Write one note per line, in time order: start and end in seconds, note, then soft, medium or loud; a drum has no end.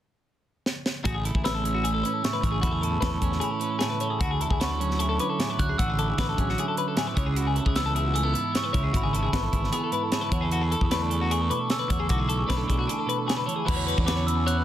0.66 snare medium
0.86 snare medium
1.04 1.30 A1 medium
1.04 2.22 A2 medium
1.04 1.15 F#4 medium
1.04 1.45 G#4 medium
1.04 kick loud
1.04 closed hi-hat medium
1.15 1.24 G#4 medium
1.25 1.85 E4 medium
1.25 1.35 A4 medium
1.25 closed hi-hat medium
1.35 2.02 A1 medium
1.35 1.44 G#4 medium
1.35 kick medium
1.44 2.42 G#4 medium
1.44 1.54 B4 medium
1.44 1.83 E6 medium
1.44 snare loud
1.44 closed hi-hat medium
1.54 1.64 A4 medium
1.64 3.22 E3 medium
1.64 2.05 C#4 medium
1.64 1.74 G#4 medium
1.64 closed hi-hat medium
1.75 1.84 F#4 medium
1.84 2.24 E4 medium
1.84 1.93 G#4 medium
1.84 2.21 E6 medium
1.84 closed hi-hat medium
1.94 2.03 A4 medium
2.03 3.22 C#4 soft
2.03 2.13 B4 medium
2.03 closed hi-hat medium
2.13 2.23 A4 medium
2.23 2.60 A2 medium
2.23 2.82 E4 medium
2.23 2.33 G#4 medium
2.23 2.64 C#6 medium
2.23 snare medium
2.23 closed hi-hat medium
2.33 2.42 B4 medium
2.42 2.60 A1 medium
2.42 2.60 G#4 medium
2.42 2.51 C#5 medium
2.42 kick medium
2.42 closed hi-hat medium
2.52 2.61 G#4 medium
2.61 2.96 E2 medium
2.61 3.81 A2 medium
2.61 2.71 F#4 medium
2.61 3.02 A4 medium
2.61 2.83 B5 medium
2.61 kick loud
2.61 closed hi-hat medium
2.71 2.81 G#4 medium
2.81 3.41 E4 soft
2.81 2.91 A4 medium
2.81 3.03 A5 medium
2.81 closed hi-hat medium
2.91 3.00 G#4 medium
3.01 3.19 E2 medium
3.01 4.02 A4 medium
3.01 3.10 B4 medium
3.01 3.43 C#6 medium
3.01 kick medium
3.01 snare loud
3.01 closed hi-hat medium
3.10 3.20 A4 medium
3.20 3.39 E2 medium
3.20 4.80 E3 medium
3.20 3.61 C#4 medium
3.20 3.31 G#4 medium
3.20 kick medium
3.20 closed hi-hat medium
3.31 3.40 F#4 medium
3.31 snare soft
3.40 3.82 E4 medium
3.40 3.51 G#4 medium
3.40 3.83 B5 medium
3.40 closed hi-hat medium
3.51 3.60 A4 medium
3.60 4.25 C#4 medium
3.60 3.71 B4 medium
3.60 closed hi-hat medium
3.71 3.79 A4 medium
3.79 4.18 A2 medium
3.79 4.25 E4 medium
3.79 3.89 G#4 medium
3.79 snare medium
3.79 closed hi-hat medium
3.84 4.10 A5 medium
3.90 4.00 B4 medium
4.00 4.22 A4 medium
4.00 4.10 C#5 medium
4.00 closed hi-hat medium
4.10 4.20 G#4 medium
4.20 4.46 D2 medium
4.20 5.76 D3 medium
4.20 4.30 F#4 medium
4.20 4.61 F#4 medium
4.20 kick loud
4.20 closed hi-hat medium
4.31 4.41 G#4 medium
4.41 5.00 E4 medium
4.41 4.50 A4 medium
4.41 closed hi-hat medium
4.50 5.18 D2 medium
4.50 4.60 G#4 medium
4.50 kick medium
4.60 5.58 F#4 medium
4.60 4.70 B4 medium
4.60 5.01 C#6 medium
4.60 snare medium
4.60 closed hi-hat medium
4.70 4.80 A4 medium
4.80 5.76 F#3 medium
4.80 5.20 C#4 soft
4.80 4.90 G#4 medium
4.80 closed hi-hat soft
4.90 4.99 F#4 medium
4.90 snare soft
4.99 5.39 E4 medium
4.99 5.09 G#4 medium
4.99 5.19 C#6 medium
4.99 closed hi-hat medium
5.09 5.19 A4 medium
5.19 5.81 C#4 soft
5.19 5.29 B4 medium
5.19 5.56 D6 medium
5.19 closed hi-hat medium
5.30 5.40 A4 medium
5.38 5.75 A2 medium
5.38 5.81 E4 medium
5.38 5.50 G#4 medium
5.38 snare medium
5.38 closed hi-hat medium
5.50 5.59 B4 medium
5.59 5.76 D2 medium
5.59 5.78 F#4 medium
5.59 5.68 C#5 medium
5.59 5.79 F#6 medium
5.59 kick medium
5.59 closed hi-hat medium
5.69 5.78 G#4 medium
5.78 6.12 A1 medium
5.78 7.13 D3 medium
5.78 6.17 F#4 medium
5.78 5.90 F#4 medium
5.78 5.96 E6 medium
5.78 kick loud
5.78 closed hi-hat medium
5.90 5.98 G#4 medium
5.99 6.58 E4 medium
5.99 6.09 A4 medium
5.99 6.35 D6 medium
5.99 closed hi-hat medium
6.09 6.18 G#4 medium
6.18 6.35 A1 medium
6.18 7.15 F#4 medium
6.18 6.28 B4 medium
6.18 kick medium
6.18 snare loud
6.18 closed hi-hat medium
6.29 6.40 A4 medium
6.37 6.55 A1 medium
6.37 7.13 F#3 medium
6.37 6.77 C#4 medium
6.37 6.48 G#4 medium
6.37 kick medium
6.37 closed hi-hat soft
6.49 6.58 F#4 medium
6.49 snare soft
6.58 6.96 E4 medium
6.58 6.68 G#4 medium
6.58 closed hi-hat medium
6.68 6.77 A4 medium
6.77 7.77 C#4 soft
6.77 6.87 B4 medium
6.77 closed hi-hat medium
6.88 6.97 A4 medium
6.96 7.13 A2 medium
6.96 7.36 E4 medium
6.96 7.07 G#4 medium
6.96 snare medium
6.96 closed hi-hat medium
7.07 7.16 B4 medium
7.15 7.59 C#2 medium
7.15 7.75 C#3 medium
7.15 7.55 G#4 medium
7.15 7.27 C#5 medium
7.15 kick loud
7.15 closed hi-hat medium
7.26 7.37 G#4 medium
7.36 7.95 E4 medium
7.36 7.46 F#4 medium
7.36 closed hi-hat medium
7.47 7.57 G#4 medium
7.55 7.65 F#4 medium
7.55 7.66 A4 medium
7.55 closed hi-hat medium
7.65 8.33 C#2 medium
7.65 8.53 G#4 medium
7.65 7.76 G#4 medium
7.65 kick medium
7.76 9.32 E3 medium
7.76 8.14 B3 medium
7.76 7.85 B4 medium
7.76 8.14 E6 medium
7.76 snare medium
7.76 closed hi-hat medium
7.86 7.95 A4 medium
7.95 8.34 E4 medium
7.95 8.04 G#4 medium
7.95 closed hi-hat medium
8.04 8.14 F#4 medium
8.14 8.23 A3 medium
8.14 8.23 G#4 medium
8.14 8.56 E6 loud
8.14 closed hi-hat medium
8.23 8.73 B3 medium
8.23 8.34 A4 medium
8.34 8.71 G#2 medium
8.34 8.74 E4 soft
8.34 8.44 B4 medium
8.34 closed hi-hat medium
8.44 8.53 A4 medium
8.53 8.64 G#4 medium
8.53 8.72 G#4 medium
8.53 snare medium
8.53 closed hi-hat medium
8.57 8.96 C#6 medium
8.64 8.73 B4 medium
8.73 8.91 C#2 medium
8.73 9.33 C#3 medium
8.73 8.93 E4 medium
8.73 8.83 C#5 medium
8.73 kick medium
8.73 closed hi-hat medium
8.84 8.93 G#4 medium
8.93 9.28 G#1 medium
8.93 9.13 E4 medium
8.93 9.03 F#4 medium
8.93 9.13 B5 medium
8.93 kick loud
8.93 closed hi-hat medium
9.03 9.13 G#4 medium
9.13 9.52 E4 medium
9.13 9.22 A4 medium
9.13 9.33 A5 medium
9.13 closed hi-hat medium
9.23 9.33 G#4 medium
9.33 9.50 G#1 medium
9.33 10.33 E3 medium
9.33 9.72 B3 soft
9.33 9.43 B4 medium
9.33 9.71 C#6 medium
9.33 kick medium
9.33 snare loud
9.33 closed hi-hat medium
9.43 9.53 A4 medium
9.52 9.70 G#1 medium
9.52 9.92 E4 medium
9.52 9.63 G#4 medium
9.52 kick medium
9.52 closed hi-hat medium
9.63 9.72 F#4 medium
9.63 snare soft
9.72 10.45 B3 medium
9.72 9.82 G#4 medium
9.72 10.14 B5 medium
9.72 closed hi-hat medium
9.84 9.92 A4 medium
9.91 10.29 G#2 medium
9.91 10.12 E4 medium
9.91 10.03 B4 medium
9.91 closed hi-hat medium
10.03 10.12 A4 medium
10.12 10.36 E4 medium
10.12 10.21 G#4 medium
10.12 10.41 A5 medium
10.12 snare medium
10.12 closed hi-hat medium
10.21 10.31 B4 medium
10.31 10.74 E2 medium
10.31 11.88 E3 medium
10.31 10.42 F#4 medium
10.31 10.42 C#5 medium
10.31 kick medium
10.31 closed hi-hat medium
10.41 10.51 G#4 medium
10.41 10.51 A4 medium
10.52 10.61 F#4 medium
10.52 10.72 A4 medium
10.52 closed hi-hat medium
10.61 10.71 G#4 medium
10.72 10.82 A4 medium
10.72 11.10 A4 medium
10.72 closed hi-hat medium
10.81 11.49 E2 medium
10.81 10.91 G#4 medium
10.81 kick medium
10.91 12.45 A3 medium
10.91 11.30 D4 medium
10.91 11.02 B4 medium
10.91 11.31 C#6 medium
10.91 snare medium
10.91 closed hi-hat medium
11.02 11.12 A4 medium
11.10 11.21 G#4 medium
11.10 11.50 A4 medium
11.10 closed hi-hat medium
11.21 11.31 F#4 medium
11.30 11.92 D4 medium
11.30 11.41 G#4 medium
11.30 11.50 C#6 medium
11.30 closed hi-hat medium
11.41 11.50 A4 medium
11.50 11.90 B2 medium
11.50 11.70 A4 medium
11.50 11.59 B4 medium
11.50 11.71 D6 medium
11.50 closed hi-hat medium
11.59 11.69 A4 medium
11.69 11.79 G#4 medium
11.69 11.88 A4 medium
11.69 12.11 E6 medium
11.69 snare medium
11.69 closed hi-hat medium
11.79 11.90 B4 medium
11.89 12.07 E2 medium
11.89 13.44 E3 medium
11.89 11.99 F#4 medium
11.89 12.00 C#5 medium
11.89 kick medium
11.89 closed hi-hat medium
11.99 12.09 G#4 medium
11.99 12.09 A4 medium
12.09 12.44 B1 medium
12.09 12.18 F#4 medium
12.09 12.27 A4 medium
12.09 12.38 D6 medium
12.09 kick loud
12.09 closed hi-hat medium
12.18 12.29 G#4 medium
12.29 12.67 A4 medium
12.29 12.39 A4 medium
12.29 closed hi-hat medium
12.38 12.48 G#4 medium
12.38 12.49 C#6 medium
12.46 12.66 B1 medium
12.46 14.04 A3 medium
12.46 12.86 D4 medium
12.46 12.57 B4 medium
12.46 12.91 B5 medium
12.46 kick medium
12.46 snare medium
12.46 closed hi-hat medium
12.58 12.67 A4 medium
12.68 12.86 B1 medium
12.68 12.78 G#4 medium
12.68 13.05 A4 medium
12.68 kick medium
12.68 closed hi-hat medium
12.79 12.89 F#4 medium
12.87 13.45 D4 medium
12.87 12.98 G#4 medium
12.87 13.44 A5 medium
12.87 closed hi-hat medium
12.98 13.08 A4 medium
13.06 13.47 B2 medium
13.06 13.26 A4 medium
13.06 13.19 B4 medium
13.06 closed hi-hat medium
13.19 13.28 A4 medium
13.27 13.37 F#4 medium
13.27 13.37 G#4 medium
13.27 snare medium
13.27 closed hi-hat medium
13.37 13.44 A4 medium
13.37 13.46 B4 medium
13.45 13.64 E3 medium
13.45 13.64 A4 medium
13.45 13.56 C#5 medium
13.45 closed hi-hat medium
13.56 13.66 G#4 medium
13.65 13.94 E2 medium
13.65 14.64 E3 medium
13.65 14.05 F#4 medium
13.65 13.76 B4 medium
13.65 14.09 B5 medium
13.65 kick loud
13.65 crash loud
13.76 13.87 C#5 medium
13.86 14.64 C#4 medium
13.86 13.98 B4 medium
13.86 closed hi-hat medium
13.98 14.64 E2 medium
13.98 14.06 D5 medium
13.98 kick medium
14.05 14.64 B3 medium
14.05 14.46 F#4 medium
14.05 14.16 B4 medium
14.05 14.16 D6 medium
14.05 snare loud
14.05 closed hi-hat medium
14.17 14.27 C#5 medium
14.27 14.37 B4 medium
14.27 14.45 E6 medium
14.27 closed hi-hat medium
14.37 14.46 G#4 medium
14.46 14.64 F#4 medium
14.46 14.57 C#5 medium
14.46 14.64 F#6 medium
14.46 closed hi-hat medium
14.57 14.64 B4 medium